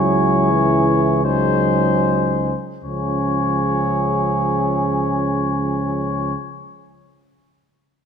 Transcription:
Already playing: bass trombone C#2, euphonium F#3, french horn E4, flugelhorn G#4, trumpet C#5
0.50 euphonium E3
1.24 euphonium F#3, french horn D#4, flugelhorn G#4, trumpet C5
2.84 bass trombone C#2, euphonium F3, french horn C#4, flugelhorn G#4, trumpet C#5

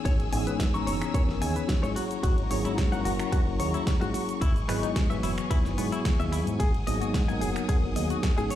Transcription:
Already playing: tine electric piano E3 B3 C#4 D#4 G#4, string section G#4 C#5 G#5 E6
0.05 fingered electric bass G#1, clean electric guitar C#5, kick, closed hi-hat, ride, shaker
0.20 closed hi-hat
0.32 fingered electric bass G#1, tine electric piano E3 B3 C#4 D#4 G#4, clean electric guitar G#5, open hi-hat, shaker
0.47 fingered electric bass G#2, clean electric guitar B4, closed hi-hat, shaker
0.60 kick, snare, closed hi-hat, ride, shaker
0.74 tine electric piano E3 B3 C#4 D#4 A#5, clean electric guitar C#6, closed hi-hat, shaker
0.87 fingered electric bass F#1, clean electric guitar C#5, open hi-hat, shaker
1.02 finger snap, closed hi-hat, shaker
1.14 tine electric piano E3 B3 C#4 D#4 A#4, clean electric guitar C#5, kick, closed hi-hat, ride, shaker
1.29 fingered electric bass F#1, snare
1.41 fingered electric bass D#2, tine electric piano E3 B3 C#4 D#4 G#4, clean electric guitar G#5, open hi-hat, shaker
1.56 clean electric guitar B4, closed hi-hat, shaker
1.69 kick, snare, closed hi-hat, ride, shaker
1.82 fingered electric bass G#2, tine electric piano F#3 A#3 C#4 E4 G#4, clean electric guitar C#5, closed hi-hat, shaker
1.96 clean electric guitar F#4, string section F#4 A#5 C#6, open hi-hat, shaker
2.11 closed hi-hat, shaker
2.23 fingered electric bass G#1, clean electric guitar F#4, kick, closed hi-hat, ride, shaker
2.38 closed hi-hat
2.50 fingered electric bass G#1, tine electric piano F#3 A#3 C#4 E4 G#4, clean electric guitar C#5, open hi-hat, shaker
2.65 fingered electric bass G#2, clean electric guitar E4, closed hi-hat, shaker
2.78 kick, snare, closed hi-hat, ride, shaker
2.92 tine electric piano F#3 A#3 C#4 E4 A#4, clean electric guitar F#5, closed hi-hat, shaker
3.05 fingered electric bass F#1, clean electric guitar F#4, open hi-hat, shaker
3.20 finger snap, closed hi-hat, shaker
3.32 tine electric piano F#3 A#3 C#4 E4 A#4, clean electric guitar F#4, muted fingered electric bass stroke, kick, closed hi-hat, ride, shaker
3.47 fingered electric bass F#1
3.59 fingered electric bass D#2, tine electric piano F#3 A#3 C#4 E4 G#4, clean electric guitar C#5, open hi-hat, shaker
3.74 clean electric guitar E4, closed hi-hat, shaker
3.87 kick, snare, closed hi-hat, ride, shaker
4.00 fingered electric bass G#2, tine electric piano F#3 A#3 C#4 E4 G#4, clean electric guitar F#4, closed hi-hat, shaker
4.14 clean electric guitar F#4, open hi-hat, shaker
4.29 closed hi-hat, shaker
4.41 fingered electric bass G#1, clean electric guitar E4, string section G#4 G#5, kick, closed hi-hat, ride, shaker
4.56 closed hi-hat, shaker
4.68 fingered electric bass G#1, tine electric piano F#3 B3 E4 G#4 D#5, clean electric guitar B4, finger snap, open hi-hat, shaker
4.83 fingered electric bass G#2, clean electric guitar D#4, closed hi-hat, shaker
4.96 kick, snare, closed hi-hat, ride, shaker
5.10 tine electric piano E3 F#3 B3 B4, clean electric guitar E5, closed hi-hat, shaker
5.23 fingered electric bass F#1, clean electric guitar E4, open hi-hat, shaker
5.38 finger snap, closed hi-hat, shaker
5.50 tine electric piano F#3 B3 D#4 E4 B4, clean electric guitar E4, kick, closed hi-hat, ride, shaker
5.65 fingered electric bass F#1, snare, shaker
5.77 fingered electric bass G#2, tine electric piano F#3 B3 E4 G#4, clean electric guitar B3, open hi-hat, shaker
5.92 clean electric guitar E4, closed hi-hat, shaker
6.05 kick, snare, closed hi-hat, ride, shaker
6.19 fingered electric bass D#2, tine electric piano F#3 B3 E4 G#4, clean electric guitar E5, closed hi-hat, shaker
6.32 clean electric guitar E4, open hi-hat, shaker
6.47 fingered electric bass G#2, closed hi-hat, shaker
6.59 fingered electric bass G#1, string section G#4 F#5 D#6, clean electric guitar G#4, kick, closed hi-hat, ride, shaker
6.74 closed hi-hat
6.87 fingered electric bass G#1, tine electric piano F#3 A#3 B3 D#4 G#4, clean electric guitar D#5, open hi-hat, shaker
7.01 fingered electric bass G#2, clean electric guitar F#4, closed hi-hat, shaker
7.14 kick, snare, closed hi-hat, ride, shaker
7.28 tine electric piano F#3 A#3 B3 D#4 A#4, clean electric guitar G#5, closed hi-hat, shaker
7.41 fingered electric bass F#1, clean electric guitar G#4, open hi-hat, shaker
7.56 finger snap, closed hi-hat, shaker
7.68 tine electric piano F#3 A#3 B3 D#4 A#4, clean electric guitar G#4, muted fingered electric bass stroke, kick, closed hi-hat, ride, shaker
7.83 fingered electric bass F#1
7.96 fingered electric bass D#2, tine electric piano F#3 A#3 B3 D#4 G#4, clean electric guitar D#5, open hi-hat, shaker
8.10 clean electric guitar F#4, closed hi-hat, shaker
8.23 kick, snare, closed hi-hat, ride, shaker
8.37 fingered electric bass G#2, tine electric piano E3 B3 C#4 D#4 G#4, clean electric guitar G#4, closed hi-hat, shaker
8.50 clean electric guitar C#5, string section C#5 E6, open hi-hat, shaker

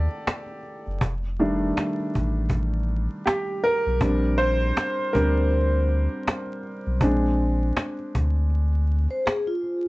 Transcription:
Already playing: upright piano D#3 A3 D4 G4 A4 D5
0.09 cajon slap
0.27 cajon slap
0.46 cajon slap
0.63 cajon slap
0.86 sub bass F#1, cajon slap
1.01 sub bass F1, cajon bass
1.23 cajon slap
1.39 upright piano D#3 G3 A3 D4, cajon slap
1.77 cajon slap
2.00 cajon slap
2.15 sub bass A1, cajon bass
2.50 cajon bass
2.73 cajon slap
2.88 cajon slap
3.09 cajon slap
3.26 upright piano G4, cajon slap
3.46 cajon slap
3.63 upright piano A#4, cajon slap
3.86 sub bass B1, cajon slap
4.01 sub bass A#1, upright piano G3 C4 D4, cajon bass
4.23 cajon slap
4.38 upright piano C5, cajon slap
4.77 cajon slap
4.99 cajon slap
5.13 sub bass D2, upright piano G3 C4 D4 A#4, cajon bass
5.50 cajon slap
5.73 cajon slap
5.89 cajon slap
6.09 cajon slap
6.27 cajon slap
6.46 cajon slap
6.63 cajon slap
6.86 sub bass B1, cajon slap
7.01 sub bass A#1, upright piano G#3 C4 D4, cajon bass
7.23 cajon slap
7.39 cajon slap
7.77 cajon slap
7.99 cajon slap
8.15 sub bass D2, cajon bass
8.36 cajon slap
8.50 cajon slap
8.73 cajon slap
8.88 cajon slap
9.08 vibraphone C5, cajon slap
9.26 vibraphone G#4, cajon slap
9.46 vibraphone F4, cajon slap
9.63 cajon slap

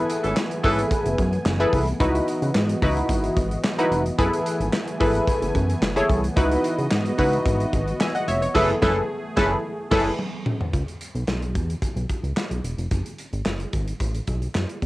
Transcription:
Already playing: analog synth pad E3 A3 B3 G#5, analog polysynth E4 G#4 A4 B4
0.10 closed hi-hat
0.24 analog synth bass G#1, horn section E3 C#4 A4, closed hi-hat
0.37 snare, clap
0.51 closed hi-hat
0.63 analog synth bass G#1, horn section E3 C#4 A4, analog polysynth E4 G#4 A4 B4, kick, open hi-hat
0.79 closed hi-hat
0.91 kick, closed hi-hat
1.06 analog synth bass F#1, closed hi-hat
1.18 analog synth bass F#2, kick, closed hi-hat
1.33 closed hi-hat
1.46 analog synth bass F#1, snare, clap
1.60 analog polysynth E4 G#4 A4 B4, closed hi-hat
1.73 analog synth bass C2, kick, open hi-hat
1.88 closed hi-hat
2.00 analog synth bass C#2, analog polysynth D#4 E4 F#4 B4, analog synth pad F#4 D#5, kick, closed hi-hat
2.15 closed hi-hat
2.28 closed hi-hat
2.42 analog synth bass C#3, closed hi-hat
2.55 analog synth bass G#2, snare, clap
2.69 closed hi-hat
2.82 analog synth bass C#2, analog polysynth D#4 E4 F#4 B4, kick, open hi-hat
2.97 closed hi-hat
3.09 analog synth bass G#1, kick, closed hi-hat
3.24 closed hi-hat
3.37 analog synth bass G#1, kick, closed hi-hat
3.51 closed hi-hat
3.64 snare, clap
3.78 analog polysynth D#4 E4 F#4 B4, closed hi-hat
3.91 analog synth bass F1, closed hi-hat
4.06 closed hi-hat
4.18 analog synth bass F#1, analog synth pad A3 B3 G#5, analog polysynth E4 G#4 A4 B4, kick, closed hi-hat
4.33 closed hi-hat
4.46 closed hi-hat
4.60 analog synth bass G#1, closed hi-hat
4.73 snare, clap
4.88 closed hi-hat
5.00 analog synth bass G#1, analog polysynth E4 G#4 A4 B4, kick, open hi-hat
5.15 closed hi-hat
5.27 kick, closed hi-hat
5.42 analog synth bass F#1, closed hi-hat
5.55 analog synth bass F#2, kick, closed hi-hat
5.70 closed hi-hat
5.82 analog synth bass F#1, snare, clap
5.96 analog polysynth E4 G#4 A4 C#5, closed hi-hat
6.09 analog synth bass C2, kick, closed hi-hat
6.24 closed hi-hat
6.36 analog synth bass C#2, analog polysynth D#4 E4 F#4 B4, analog synth pad F#4 D#5, kick, closed hi-hat
6.51 closed hi-hat
6.64 closed hi-hat
6.78 analog synth bass C#3, closed hi-hat
6.91 analog synth bass G#2, snare, clap
7.06 closed hi-hat
7.18 analog synth bass C#2, analog polysynth D#4 E4 F#4 B4, kick, open hi-hat
7.33 closed hi-hat
7.46 analog synth bass G#1, kick, closed hi-hat
7.60 closed hi-hat
7.73 analog synth bass G#1, kick, closed hi-hat
7.88 closed hi-hat
8.00 analog polysynth E5 G#5, snare, clap
8.15 analog polysynth D#5 F#5, closed hi-hat
8.28 analog synth bass F1, analog polysynth C#5 E5, closed hi-hat
8.42 analog polysynth C#5, closed hi-hat
8.54 analog synth bass F#1, horn section E3 C#4 A4, analog synth pad A3 G#4, analog polysynth E4 G#4 A4 B4, kick, snare, crash
8.82 analog synth bass F#1, horn section E3 C#4 A4, analog polysynth E4 G#4 A4 B4, kick, snare
9.36 analog synth bass F#1, horn section E3 C#4 A4, analog polysynth E4 G#4 A4 B4, kick, snare
9.91 analog synth bass F#1, horn section E3 C#4 A4, analog polysynth E4 G#4 A4 B4, kick, snare, crash
10.19 high tom
10.46 mid tom
10.61 floor tom
10.73 analog synth bass C#2, kick, closed hi-hat
10.88 closed hi-hat
11.01 closed hi-hat
11.15 analog synth bass B1, closed hi-hat
11.28 analog synth bass B1, snare, clap
11.42 closed hi-hat
11.55 analog synth bass E2, kick, closed hi-hat
11.70 closed hi-hat
11.82 kick, closed hi-hat
11.96 analog synth bass B1, closed hi-hat
12.09 kick, closed hi-hat
12.23 analog synth bass C#2, closed hi-hat
12.37 snare, clap
12.51 analog synth bass B1, closed hi-hat
12.64 analog synth bass E1, closed hi-hat
12.78 analog synth bass F1, closed hi-hat
12.91 analog synth bass F#1, kick, closed hi-hat
13.06 closed hi-hat
13.19 closed hi-hat
13.33 analog synth bass G#1, closed hi-hat
13.46 analog synth bass F#1, snare, clap
13.60 closed hi-hat
13.73 analog synth bass G#1, kick, closed hi-hat
13.88 closed hi-hat
14.00 analog synth bass A1, kick, closed hi-hat
14.15 closed hi-hat
14.27 analog synth bass B1, kick, closed hi-hat
14.42 closed hi-hat
14.55 analog synth bass F#2, snare, clap
14.69 closed hi-hat
14.82 analog synth bass E2, kick

